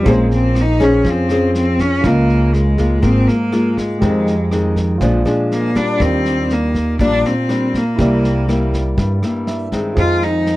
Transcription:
0.00 0.12 G3 medium
0.00 1.98 C4 medium
0.00 2.06 C#4 medium
0.00 0.05 F4 soft
0.00 0.07 G#4 medium
0.00 0.09 C5 medium
0.05 1.01 A#1 loud
0.05 1.02 A#3 medium
0.05 0.55 C#4 medium
0.05 1.99 F4 medium
0.05 0.55 G#4 medium
0.05 2.01 G#4 soft
0.05 0.56 C5 medium
0.05 kick medium
0.05 snare soft
0.09 0.33 G#3 medium
0.09 2.02 C5 medium
0.31 0.62 C4 medium
0.31 snare soft
0.55 cross-stick medium
0.55 snare soft
0.61 0.85 D#4 medium
0.80 1.26 C#4 medium
0.80 1.12 C#4 medium
0.80 1.26 G#4 medium
0.80 1.26 C5 medium
0.80 kick soft
0.80 snare soft
1.05 2.00 F2 medium
1.05 2.02 F3 medium
1.05 kick medium
1.05 snare soft
1.10 1.56 C4 medium
1.29 2.00 C#4 medium
1.29 2.00 G#4 medium
1.29 2.01 C5 medium
1.29 cross-stick medium
1.29 snare soft
1.55 1.82 C4 medium
1.55 snare soft
1.79 2.07 C#4 loud
1.79 kick soft
1.79 snare soft
2.01 2.99 C#2 medium
2.01 3.01 C#3 medium
2.01 2.74 G#3 medium
2.01 2.75 A#3 medium
2.01 3.96 F4 medium
2.01 3.97 G#4 soft
2.01 3.98 A#4 soft
2.01 kick medium
2.01 cross-stick medium
2.01 snare soft
2.06 2.56 A#3 medium
2.06 2.75 F4 medium
2.06 3.99 D#5 medium
2.29 snare soft
2.53 3.04 G#3 medium
2.53 snare soft
2.78 2.99 G#3 medium
2.78 2.99 A#3 medium
2.78 3.00 F4 medium
2.78 kick soft
2.78 snare soft
3.02 3.26 G#1 medium
3.02 3.99 G#2 medium
3.02 3.34 G#3 medium
3.02 3.35 A#3 medium
3.02 3.29 C4 medium
3.02 3.35 F4 medium
3.02 kick medium
3.02 cross-stick medium
3.02 snare soft
3.27 3.79 A#3 medium
3.27 snare soft
3.52 4.00 G#3 medium
3.52 4.00 A#3 medium
3.52 4.00 F4 medium
3.52 cross-stick medium
3.52 snare soft
3.77 4.76 G#3 medium
3.77 kick soft
3.77 snare soft
3.99 4.98 F2 medium
3.99 4.97 F2 medium
3.99 4.34 D#3 medium
3.99 4.34 G#3 medium
3.99 4.98 G4 soft
3.99 4.99 G#4 soft
3.99 kick medium
3.99 snare soft
4.03 4.34 C4 medium
4.03 5.00 C5 soft
4.03 5.00 D#5 medium
4.27 snare soft
4.51 4.97 D#3 medium
4.51 4.98 G#3 medium
4.51 4.98 C4 medium
4.51 cross-stick medium
4.51 snare soft
4.76 kick soft
4.76 snare soft
4.98 5.24 A#1 medium
4.98 5.98 A#2 medium
4.98 5.22 F3 medium
4.98 5.22 G#3 medium
4.98 5.96 F4 medium
4.98 5.98 G#4 medium
4.98 kick medium
4.98 snare soft
5.02 5.22 D4 medium
5.02 5.99 C5 medium
5.02 6.00 D5 medium
5.25 5.71 F3 medium
5.25 5.71 G#3 medium
5.25 5.72 D4 medium
5.25 cross-stick medium
5.25 snare soft
5.51 5.78 A#3 medium
5.51 snare soft
5.75 6.71 G3 medium
5.75 6.71 A#3 medium
5.75 6.71 D4 medium
5.75 6.03 D4 medium
5.75 kick soft
5.75 snare soft
5.97 6.95 D#2 medium
5.97 6.97 D#3 medium
5.97 6.54 C4 loud
5.97 7.93 F4 soft
5.97 7.94 G4 soft
5.97 7.95 A#4 soft
5.97 kick medium
5.97 cross-stick medium
5.97 snare soft
6.03 7.96 D5 medium
6.25 snare soft
6.49 7.00 A#3 medium
6.49 snare soft
6.75 kick soft
6.75 snare soft
6.99 7.22 A#1 medium
6.99 7.96 A#2 medium
6.99 7.32 G3 medium
6.99 7.32 A#3 medium
6.99 7.28 D4 loud
6.99 7.32 D4 medium
6.99 kick medium
6.99 cross-stick medium
6.99 snare soft
7.25 7.78 C4 medium
7.25 snare soft
7.49 7.82 G3 medium
7.49 7.83 A#3 medium
7.49 7.83 D4 medium
7.49 cross-stick medium
7.49 snare soft
7.74 8.74 A#3 medium
7.74 kick soft
7.74 snare soft
7.95 8.94 C2 loud
7.95 8.95 C3 medium
7.95 8.44 G3 medium
7.95 8.44 A#3 medium
7.95 9.91 E4 medium
7.95 9.92 G4 soft
7.95 kick medium
7.95 snare soft
7.99 8.45 E4 medium
7.99 9.93 A#4 soft
7.99 9.94 D5 medium
8.24 snare soft
8.48 9.19 G3 medium
8.48 9.19 A#3 medium
8.48 9.19 E4 medium
8.48 cross-stick medium
8.48 snare soft
8.73 kick soft
8.73 snare soft
8.98 9.21 G2 medium
8.98 9.95 G2 medium
8.98 kick medium
8.98 snare soft
9.23 9.68 G3 medium
9.23 9.69 A#3 medium
9.23 9.69 E4 medium
9.23 cross-stick medium
9.23 snare soft
9.47 9.93 E5 medium
9.47 snare soft
9.72 10.56 D#3 medium
9.72 10.56 G#3 medium
9.72 10.56 C4 medium
9.72 kick soft
9.72 snare soft
9.94 10.56 F2 medium
9.94 10.56 F4 medium
9.94 10.56 G#4 soft
9.94 10.56 C5 soft
9.94 kick medium
9.94 cross-stick medium
9.94 snare soft
9.99 10.25 F4 loud
9.99 10.56 D#5 soft
10.22 10.56 D#4 loud
10.22 snare soft
10.46 snare soft

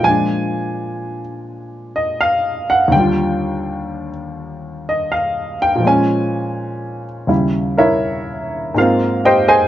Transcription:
0.00 2.90 A#2 soft
0.00 2.92 F3 soft
0.04 2.93 G#3 soft
0.04 1.21 G#5 medium
0.09 2.95 D4 medium
1.96 2.19 D#5 medium
2.21 2.65 F5 medium
2.70 2.92 F#5 medium
2.88 5.81 D#2 medium
2.88 5.83 D3 medium
2.92 5.85 G3 medium
2.92 4.10 G5 medium
3.00 5.87 F4 medium
4.89 5.11 D#5 medium
5.12 5.56 F5 medium
5.62 5.84 G5 medium
5.75 7.25 A#2 medium
5.80 7.27 F3 medium
5.84 7.29 G#3 soft
5.84 7.30 C#4 medium
5.84 7.03 G#5 medium
7.27 8.76 D#2 soft
7.27 8.76 C#3 soft
7.27 8.76 G3 soft
7.27 7.78 E4 medium
7.78 8.73 E4 medium
7.78 8.72 A#4 medium
7.78 8.73 C#5 medium
7.78 8.73 E5 medium
8.74 9.68 G#2 medium
8.74 9.68 G#3 soft
8.74 9.68 A#3 medium
8.74 9.26 F4 medium
8.74 9.26 F5 medium
8.80 9.68 C4 medium
9.25 9.49 G4 medium
9.25 9.47 C5 medium
9.25 9.47 D#5 medium
9.25 9.49 G5 medium
9.48 9.68 G#4 medium
9.48 9.68 C5 medium
9.48 9.68 D#5 medium
9.48 9.68 G#5 medium

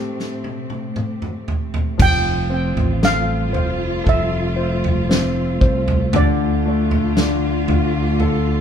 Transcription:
0.00 1.95 A2 medium
0.00 1.96 A2 medium
0.00 1.97 A3 medium
0.00 2.01 A3 soft
0.00 1.95 C4 medium
0.00 2.01 C4 soft
0.00 2.01 G4 soft
0.00 1.44 C5 medium
0.20 snare soft
0.44 high tom medium
0.70 high tom medium
0.96 mid tom medium
1.22 mid tom medium
1.48 floor tom medium
1.74 floor tom medium
1.98 2.73 F1 loud
1.98 6.08 F3 medium
1.98 6.10 G3 medium
1.98 8.61 A3 medium
1.98 6.09 F4 medium
1.98 kick loud
1.98 floor tom loud
1.98 crash loud
2.02 3.00 G5 loud
2.50 4.53 C4 medium
2.77 3.54 A1 medium
2.77 floor tom medium
3.03 4.03 A4 medium
3.03 4.10 F5 loud
3.03 snare loud
3.53 4.03 F1 loud
3.53 4.55 C5 medium
3.53 floor tom medium
4.04 5.57 F1 medium
4.04 6.08 A4 medium
4.04 kick medium
4.04 floor tom medium
4.09 6.21 E5 medium
4.56 5.60 C5 medium
4.84 floor tom medium
5.09 6.10 C4 medium
5.09 snare loud
5.61 6.14 C2 medium
5.61 6.11 C5 medium
5.61 kick medium
5.88 floor tom medium
6.12 7.64 D2 loud
6.12 8.61 D3 medium
6.12 8.61 F4 medium
6.12 floor tom loud
6.16 8.61 D5 medium
6.66 8.61 A3 medium
6.91 floor tom medium
7.17 8.61 D4 medium
7.17 snare loud
7.68 8.61 D2 loud
7.68 8.61 F4 medium
7.68 floor tom medium
8.20 8.61 A4 medium
8.20 floor tom medium

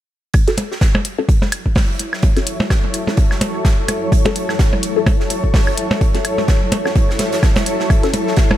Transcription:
0.34 8.57 F#3 medium
0.34 kick loud
0.34 closed hi-hat medium
0.34 high woodblock medium
0.47 0.57 C#4 medium
0.47 0.57 F#4 medium
0.47 0.57 A4 loud
0.47 snare soft
0.47 closed hi-hat soft
0.57 closed hi-hat medium
0.57 percussion blips soft
0.71 snare soft
0.81 kick loud
0.81 snare loud
0.81 closed hi-hat medium
0.95 percussion blips medium
0.95 high woodblock medium
1.03 8.57 E4 medium
1.03 closed hi-hat medium
1.18 1.24 C#4 medium
1.18 1.24 F#4 medium
1.18 1.24 A4 loud
1.29 kick loud
1.29 closed hi-hat medium
1.34 8.57 C#5 medium
1.42 snare soft
1.42 percussion blips soft
1.52 closed hi-hat medium
1.52 high woodblock medium
1.61 8.57 A4 medium
1.66 kick medium
1.75 kick loud
1.75 snare loud
1.75 open hi-hat medium
1.75 percussion blips medium
1.99 closed hi-hat medium
2.13 snare soft
2.13 high woodblock medium
2.23 kick loud
2.23 closed hi-hat medium
2.23 percussion blips soft
2.36 2.46 C#4 medium
2.36 2.46 F#4 medium
2.36 2.46 A4 loud
2.36 snare soft
2.36 closed hi-hat soft
2.47 closed hi-hat medium
2.60 snare soft
2.60 percussion blips medium
2.70 kick loud
2.70 snare loud
2.70 closed hi-hat medium
2.70 high woodblock medium
2.94 closed hi-hat medium
3.07 3.13 C#4 medium
3.07 3.13 F#4 medium
3.07 3.13 A4 loud
3.07 snare medium
3.07 percussion blips soft
3.17 kick loud
3.17 closed hi-hat medium
3.31 snare soft
3.31 high woodblock medium
3.41 closed hi-hat medium
3.41 percussion blips medium
3.65 kick loud
3.65 snare loud
3.65 closed hi-hat medium
3.88 closed hi-hat medium
3.88 percussion blips soft
3.88 high woodblock medium
4.12 kick loud
4.12 closed hi-hat medium
4.25 4.35 C#4 medium
4.25 4.35 F#4 medium
4.25 4.35 A4 loud
4.25 snare soft
4.25 closed hi-hat soft
4.25 percussion blips medium
4.36 closed hi-hat medium
4.49 snare medium
4.49 high woodblock medium
4.59 kick loud
4.59 snare loud
4.59 closed hi-hat medium
4.73 percussion blips soft
4.83 closed hi-hat medium
4.96 5.02 C#4 medium
4.96 5.02 F#4 medium
4.96 5.02 A4 loud
5.07 kick loud
5.07 closed hi-hat medium
5.07 percussion blips medium
5.07 high woodblock medium
5.20 snare soft
5.30 closed hi-hat medium
5.44 kick medium
5.54 kick loud
5.54 snare loud
5.54 open hi-hat medium
5.54 percussion blips soft
5.67 high woodblock medium
5.77 closed hi-hat medium
5.91 snare soft
5.91 percussion blips medium
6.01 kick loud
6.01 closed hi-hat medium
6.14 6.24 C#4 medium
6.14 6.24 F#4 medium
6.14 6.24 A4 loud
6.14 snare soft
6.14 closed hi-hat soft
6.25 closed hi-hat medium
6.25 high woodblock medium
6.37 snare soft
6.37 percussion blips soft
6.48 kick loud
6.48 snare loud
6.48 closed hi-hat medium
6.72 closed hi-hat medium
6.72 percussion blips medium
6.85 6.91 C#4 medium
6.85 6.91 F#4 medium
6.85 6.91 A4 loud
6.85 snare medium
6.85 high woodblock medium
6.95 kick loud
6.95 closed hi-hat medium
7.10 snare medium
7.19 snare loud
7.19 closed hi-hat medium
7.19 percussion blips soft
7.33 snare loud
7.33 closed hi-hat medium
7.43 kick loud
7.43 snare loud
7.43 closed hi-hat medium
7.43 high woodblock medium
7.56 snare loud
7.56 closed hi-hat medium
7.56 percussion blips medium
7.66 closed hi-hat medium
7.80 snare medium
7.90 kick loud
7.90 closed hi-hat medium
7.90 high woodblock medium
8.03 8.13 C#4 medium
8.03 8.13 F#4 medium
8.03 8.13 A4 loud
8.03 snare soft
8.03 closed hi-hat soft
8.14 closed hi-hat medium
8.14 percussion blips soft
8.27 snare soft
8.36 kick loud
8.36 snare loud
8.36 closed hi-hat medium
8.51 percussion blips medium
8.51 high woodblock medium

